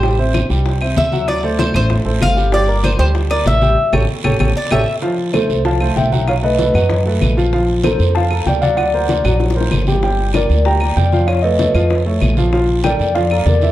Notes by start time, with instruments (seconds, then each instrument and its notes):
Already playing: upright bass A1, cuban tres C5
0.03 grand piano G3 G4 G5, high bongo, high conga, long guiro
0.19 grand piano C4 C5 E5, high conga
0.34 high bongo, high conga, short guiro, claves
0.50 upright bass C2, grand piano G3 G4 G5, high bongo, high conga, short guiro
0.66 high bongo, high conga, long guiro
0.81 grand piano C4 C5 E5, high bongo, high conga, claves
0.97 upright bass D2, cuban tres E5, high bongo, low bongo, high conga, short guiro
1.12 grand piano F#3 F#4 F#5, high bongo, high conga, short guiro
1.28 cuban tres D5, high bongo, high conga, long guiro, claves
1.43 grand piano A3 A4 C5, high conga
1.59 cuban tres C5, high bongo, high conga, short guiro
1.74 upright bass A1, grand piano A3 A4 C5, cuban tres C5, high bongo, high conga, low conga, short guiro, claves
1.90 high bongo, high conga, low conga, long guiro
2.05 upright bass A1, grand piano A3 A4 C5, high bongo, high conga
2.21 upright bass G1, cuban tres F5, high bongo, low bongo, high conga, short guiro, claves
2.36 grand piano G3 G4 G5, high bongo, short guiro
2.52 grand piano G3 G4 G5, cuban tres D5, high bongo, high conga, long guiro
2.68 grand piano A#3 A#4 D5, high conga
2.84 cuban tres C5, high bongo, high conga, short guiro, claves
2.98 upright bass D2, grand piano G3 G4 G5, cuban tres C5, high bongo, high conga, short guiro
3.15 high bongo, high conga, long guiro
3.30 grand piano A#3 A#4 D5, cuban tres D5, high bongo, high conga, claves
3.46 upright bass A1, cuban tres E5, high bongo, low bongo, high conga, short guiro
3.62 grand piano G3 G4 G5, high bongo, high conga, short guiro
3.93 upright bass A1, grand piano G4 A4 C#5, low bongo, high conga, long guiro, claves
4.24 upright bass A1, grand piano G4 A4 C#5, low bongo, high conga, long guiro, claves
4.40 upright bass A1, grand piano G4 A4 C#5, low bongo, high conga, long guiro, claves
4.57 cuban tres D5
4.71 upright bass A1, grand piano G4 A4 C#5, cuban tres E5, low bongo, high conga, long guiro, claves
5.02 grand piano F3 F4 F5, high bongo, high conga, long guiro
5.18 high conga
5.33 grand piano A3 A4 C5, tine electric piano A4 C5, high bongo, high conga, short guiro, claves
5.49 upright bass C2, high bongo, high conga, short guiro
5.65 grand piano F3 F4 F5, tine electric piano F5 A5, high bongo, high conga, long guiro
5.81 grand piano A3 A4 C5, high bongo, high conga, claves
5.96 upright bass B1, tine electric piano E5 G5, high bongo, low bongo, high conga, short guiro
6.12 grand piano F#3 F#4 F#5, high bongo, high conga, short guiro
6.27 tine electric piano C#5 F5, high bongo, high conga, long guiro, claves
6.43 grand piano A3 A4 B4, tine electric piano B4 D#5, high conga
6.59 grand piano A3 A4 B4, high bongo, high conga, short guiro
6.74 upright bass F#2, grand piano F#3 F#4 F#5, high bongo, high conga, low conga, short guiro, claves
6.90 high bongo, high conga, low conga, long guiro
7.05 grand piano A3 A4 B4, high bongo, high conga
7.21 upright bass A#1, high bongo, low bongo, high conga, short guiro, claves
7.37 grand piano F3 F4 F5, high bongo, short guiro
7.53 grand piano F3 F4 F5, high bongo, high conga, long guiro
7.69 high conga
7.84 grand piano A#3 A4 C5, tine electric piano A4 C5, high bongo, high conga, short guiro, claves
7.99 upright bass F2, high bongo, high conga, short guiro
8.15 grand piano F3 F4 F5, tine electric piano F5 A5, high bongo, high conga, long guiro
8.31 grand piano A#3 A4 A#4, high bongo, high conga, claves
8.46 upright bass D2, tine electric piano D5 G5, high bongo, low bongo, high conga, short guiro
8.62 grand piano F#3 F#4 F#5, tine electric piano D5 F5, high bongo, high conga, short guiro
8.77 tine electric piano D5 F#5, high bongo, high conga, long guiro, claves
8.93 grand piano A#3 A#4 C5, high conga
9.09 grand piano A#3 A#4 C5, high bongo, high conga, short guiro
9.24 upright bass A#1, grand piano F#3 F#4 F#5, high bongo, high conga, low conga, short guiro, claves
9.40 high bongo, high conga, long guiro
9.50 high bongo
9.56 grand piano A#3 A#4 C5, high conga
9.61 high bongo
9.71 upright bass G1, low bongo, high conga, short guiro, claves
9.82 low bongo
9.87 grand piano G3 G4 G5, high conga, short guiro
9.92 low bongo
10.03 grand piano G3 G4 G5, high bongo, high conga, long guiro
10.19 high conga
10.34 grand piano A#3 A#4 D5, tine electric piano A#4 D5, high bongo, high conga, short guiro, claves
10.49 upright bass D2, high bongo, high conga, short guiro
10.65 grand piano G3 G4 G5, tine electric piano G5 A#5, high bongo, high conga, long guiro
10.81 grand piano A#3 A#4 D5, high bongo, high conga, claves
10.96 upright bass F2, tine electric piano D5 G5, high bongo, low bongo, high conga, short guiro
11.12 grand piano F3 F4 F5, high bongo, high conga, short guiro
11.27 tine electric piano C#5 F5, high bongo, high conga, long guiro, claves
11.42 grand piano A3 A4 C#5, tine electric piano B4 D#5, high conga
11.59 grand piano A3 A4 C#5, high bongo, high conga, short guiro
11.74 upright bass F2, grand piano F3 F4 F5, high bongo, high conga, low conga, short guiro, claves
11.90 high bongo, high conga, long guiro
12.06 grand piano A3 A4 C#5, high bongo, high conga
12.21 upright bass A#1, high bongo, low bongo, high conga, short guiro, claves
12.37 grand piano F3 F4 F5, high bongo, high conga, short guiro
12.53 grand piano F3 F4 F5, high bongo, high conga, long guiro
12.69 high conga
12.84 grand piano A#3 A4 A#4, tine electric piano D5 G5, high bongo, high conga, short guiro, claves
12.99 upright bass F2, high bongo, high conga, short guiro
13.15 grand piano F3 F4 F5, tine electric piano D5 F5, high bongo, high conga, long guiro
13.31 grand piano A#3 A4 A#4, high bongo, high conga, claves
13.46 upright bass E2, tine electric piano A#4 D5, high bongo, low bongo, high conga, short guiro
13.62 grand piano E3 E4 E5, high bongo, high conga, short guiro